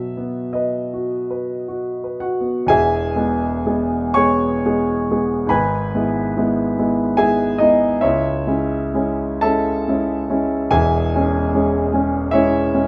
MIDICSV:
0, 0, Header, 1, 2, 480
1, 0, Start_track
1, 0, Key_signature, 4, "major"
1, 0, Tempo, 1134216
1, 714, Tempo, 1032702
1, 1194, Tempo, 933126
1, 1195, Time_signature, 3, 2, 24, 8
1, 1674, Tempo, 998336
1, 2154, Tempo, 863309
1, 3114, Tempo, 832178
1, 4074, Tempo, 918836
1, 5034, Tempo, 842697
1, 5514, Tempo, 805369
1, 6797, End_track
2, 0, Start_track
2, 0, Title_t, "Grand piano"
2, 0, Program_c, 0, 0
2, 0, Control_c, 0, 64, 127
2, 0, Note_on_c, 0, 47, 44
2, 0, Note_on_c, 0, 54, 31
2, 0, Note_on_c, 0, 76, 69
2, 73, Note_on_c, 0, 59, 32
2, 173, Note_off_c, 0, 54, 0
2, 224, Note_on_c, 0, 75, 46
2, 230, Note_off_c, 0, 76, 0
2, 233, Note_on_c, 0, 71, 32
2, 332, Note_off_c, 0, 59, 0
2, 395, Note_on_c, 0, 66, 34
2, 492, Note_off_c, 0, 71, 0
2, 553, Note_on_c, 0, 71, 32
2, 651, Note_off_c, 0, 66, 0
2, 712, Note_on_c, 0, 66, 34
2, 815, Note_off_c, 0, 71, 0
2, 878, Note_on_c, 0, 71, 31
2, 952, Note_off_c, 0, 66, 0
2, 954, Note_on_c, 0, 78, 53
2, 959, Note_on_c, 0, 66, 43
2, 963, Note_off_c, 0, 75, 0
2, 1048, Note_on_c, 0, 59, 29
2, 1136, Note_off_c, 0, 71, 0
2, 1168, Note_on_c, 0, 40, 58
2, 1173, Note_off_c, 0, 66, 0
2, 1176, Note_on_c, 0, 80, 85
2, 1177, Note_off_c, 0, 47, 0
2, 1183, Note_on_c, 0, 76, 66
2, 1184, Note_on_c, 0, 68, 65
2, 1186, Note_on_c, 0, 28, 56
2, 1187, Note_off_c, 0, 78, 0
2, 1193, Note_off_c, 0, 59, 0
2, 1203, Control_c, 0, 64, 0
2, 1294, Control_c, 0, 64, 127
2, 1400, Note_off_c, 0, 40, 0
2, 1411, Note_off_c, 0, 28, 0
2, 1418, Note_off_c, 0, 68, 0
2, 1419, Note_on_c, 0, 56, 42
2, 1421, Note_on_c, 0, 59, 43
2, 1425, Note_on_c, 0, 68, 42
2, 1652, Note_off_c, 0, 56, 0
2, 1653, Note_off_c, 0, 59, 0
2, 1655, Note_off_c, 0, 68, 0
2, 1676, Note_on_c, 0, 59, 40
2, 1679, Note_on_c, 0, 56, 40
2, 1681, Note_on_c, 0, 68, 43
2, 1897, Note_off_c, 0, 76, 0
2, 1904, Note_off_c, 0, 59, 0
2, 1905, Note_off_c, 0, 80, 0
2, 1906, Note_off_c, 0, 56, 0
2, 1907, Note_off_c, 0, 68, 0
2, 1908, Note_on_c, 0, 85, 86
2, 1912, Note_on_c, 0, 80, 64
2, 1914, Note_on_c, 0, 73, 62
2, 1920, Note_on_c, 0, 56, 38
2, 1921, Note_on_c, 0, 59, 40
2, 1923, Note_on_c, 0, 68, 43
2, 2134, Note_off_c, 0, 56, 0
2, 2134, Note_off_c, 0, 59, 0
2, 2136, Note_off_c, 0, 68, 0
2, 2156, Note_on_c, 0, 56, 38
2, 2157, Note_on_c, 0, 59, 42
2, 2161, Note_on_c, 0, 68, 44
2, 2383, Note_off_c, 0, 56, 0
2, 2383, Note_off_c, 0, 59, 0
2, 2385, Note_off_c, 0, 68, 0
2, 2409, Note_on_c, 0, 56, 39
2, 2409, Note_on_c, 0, 59, 37
2, 2412, Note_on_c, 0, 68, 41
2, 2608, Note_on_c, 0, 44, 60
2, 2613, Note_off_c, 0, 80, 0
2, 2614, Note_off_c, 0, 73, 0
2, 2620, Note_on_c, 0, 83, 77
2, 2622, Note_off_c, 0, 56, 0
2, 2622, Note_off_c, 0, 59, 0
2, 2623, Note_off_c, 0, 68, 0
2, 2626, Note_on_c, 0, 80, 63
2, 2629, Note_on_c, 0, 71, 56
2, 2631, Note_on_c, 0, 32, 53
2, 2633, Note_off_c, 0, 85, 0
2, 2650, Control_c, 0, 64, 0
2, 2745, Control_c, 0, 64, 127
2, 2852, Note_off_c, 0, 44, 0
2, 2864, Note_off_c, 0, 32, 0
2, 2875, Note_on_c, 0, 56, 38
2, 2876, Note_on_c, 0, 59, 42
2, 2883, Note_on_c, 0, 64, 44
2, 3091, Note_off_c, 0, 56, 0
2, 3092, Note_off_c, 0, 59, 0
2, 3095, Note_off_c, 0, 64, 0
2, 3110, Note_on_c, 0, 56, 42
2, 3112, Note_on_c, 0, 59, 42
2, 3113, Note_on_c, 0, 64, 47
2, 3331, Note_off_c, 0, 56, 0
2, 3332, Note_off_c, 0, 59, 0
2, 3333, Note_off_c, 0, 64, 0
2, 3348, Note_on_c, 0, 56, 41
2, 3351, Note_on_c, 0, 59, 41
2, 3355, Note_on_c, 0, 64, 45
2, 3561, Note_off_c, 0, 80, 0
2, 3563, Note_off_c, 0, 71, 0
2, 3564, Note_off_c, 0, 56, 0
2, 3566, Note_off_c, 0, 59, 0
2, 3568, Note_off_c, 0, 64, 0
2, 3572, Note_on_c, 0, 80, 79
2, 3577, Note_on_c, 0, 76, 63
2, 3578, Note_on_c, 0, 68, 63
2, 3581, Note_off_c, 0, 83, 0
2, 3583, Note_on_c, 0, 56, 44
2, 3586, Note_on_c, 0, 59, 42
2, 3588, Note_on_c, 0, 64, 44
2, 3803, Note_off_c, 0, 56, 0
2, 3804, Note_off_c, 0, 59, 0
2, 3805, Note_off_c, 0, 64, 0
2, 3806, Note_off_c, 0, 68, 0
2, 3806, Note_off_c, 0, 76, 0
2, 3810, Note_on_c, 0, 75, 76
2, 3815, Note_on_c, 0, 63, 55
2, 3820, Note_off_c, 0, 80, 0
2, 3824, Note_on_c, 0, 56, 40
2, 3826, Note_on_c, 0, 59, 40
2, 3831, Note_on_c, 0, 64, 46
2, 4048, Note_off_c, 0, 56, 0
2, 4049, Note_off_c, 0, 59, 0
2, 4049, Note_off_c, 0, 63, 0
2, 4052, Note_off_c, 0, 64, 0
2, 4056, Note_on_c, 0, 76, 77
2, 4062, Note_on_c, 0, 73, 56
2, 4063, Note_on_c, 0, 64, 59
2, 4064, Note_off_c, 0, 75, 0
2, 4071, Note_on_c, 0, 37, 56
2, 4082, Control_c, 0, 64, 0
2, 4152, Control_c, 0, 64, 127
2, 4292, Note_off_c, 0, 37, 0
2, 4294, Note_off_c, 0, 64, 0
2, 4298, Note_on_c, 0, 56, 40
2, 4301, Note_on_c, 0, 61, 45
2, 4301, Note_on_c, 0, 64, 46
2, 4526, Note_off_c, 0, 56, 0
2, 4527, Note_off_c, 0, 61, 0
2, 4528, Note_off_c, 0, 64, 0
2, 4544, Note_on_c, 0, 56, 46
2, 4549, Note_on_c, 0, 64, 47
2, 4550, Note_on_c, 0, 61, 43
2, 4776, Note_off_c, 0, 73, 0
2, 4780, Note_off_c, 0, 56, 0
2, 4782, Note_off_c, 0, 64, 0
2, 4783, Note_off_c, 0, 61, 0
2, 4788, Note_off_c, 0, 76, 0
2, 4790, Note_on_c, 0, 81, 83
2, 4796, Note_on_c, 0, 69, 66
2, 4796, Note_on_c, 0, 76, 66
2, 4804, Note_on_c, 0, 56, 42
2, 4804, Note_on_c, 0, 61, 43
2, 4808, Note_on_c, 0, 64, 50
2, 5014, Note_off_c, 0, 56, 0
2, 5014, Note_off_c, 0, 61, 0
2, 5015, Note_off_c, 0, 64, 0
2, 5036, Note_on_c, 0, 56, 45
2, 5041, Note_on_c, 0, 64, 50
2, 5042, Note_on_c, 0, 61, 46
2, 5252, Note_off_c, 0, 56, 0
2, 5254, Note_off_c, 0, 64, 0
2, 5255, Note_off_c, 0, 61, 0
2, 5271, Note_on_c, 0, 61, 44
2, 5274, Note_on_c, 0, 56, 44
2, 5275, Note_on_c, 0, 64, 50
2, 5488, Note_off_c, 0, 69, 0
2, 5488, Note_off_c, 0, 76, 0
2, 5490, Note_off_c, 0, 61, 0
2, 5492, Note_off_c, 0, 56, 0
2, 5492, Note_off_c, 0, 64, 0
2, 5503, Note_on_c, 0, 40, 66
2, 5505, Note_on_c, 0, 80, 83
2, 5507, Note_off_c, 0, 81, 0
2, 5512, Note_on_c, 0, 68, 61
2, 5512, Note_on_c, 0, 76, 65
2, 5513, Note_on_c, 0, 28, 61
2, 5525, Control_c, 0, 64, 0
2, 5623, Control_c, 0, 64, 127
2, 5747, Note_off_c, 0, 40, 0
2, 5752, Note_off_c, 0, 28, 0
2, 5771, Note_on_c, 0, 56, 46
2, 5773, Note_on_c, 0, 61, 51
2, 5978, Note_off_c, 0, 56, 0
2, 5979, Note_off_c, 0, 61, 0
2, 6005, Note_on_c, 0, 56, 49
2, 6008, Note_on_c, 0, 61, 55
2, 6212, Note_off_c, 0, 56, 0
2, 6214, Note_off_c, 0, 61, 0
2, 6235, Note_on_c, 0, 56, 47
2, 6241, Note_on_c, 0, 61, 52
2, 6446, Note_off_c, 0, 68, 0
2, 6446, Note_off_c, 0, 76, 0
2, 6449, Note_off_c, 0, 56, 0
2, 6453, Note_off_c, 0, 61, 0
2, 6462, Note_on_c, 0, 76, 85
2, 6466, Note_off_c, 0, 80, 0
2, 6471, Note_on_c, 0, 64, 64
2, 6475, Note_on_c, 0, 73, 62
2, 6480, Note_on_c, 0, 56, 50
2, 6486, Note_on_c, 0, 61, 54
2, 6694, Note_off_c, 0, 56, 0
2, 6696, Note_off_c, 0, 64, 0
2, 6698, Note_off_c, 0, 61, 0
2, 6699, Note_off_c, 0, 73, 0
2, 6709, Note_off_c, 0, 76, 0
2, 6719, Note_on_c, 0, 56, 45
2, 6720, Note_on_c, 0, 61, 51
2, 6797, Note_off_c, 0, 56, 0
2, 6797, Note_off_c, 0, 61, 0
2, 6797, End_track
0, 0, End_of_file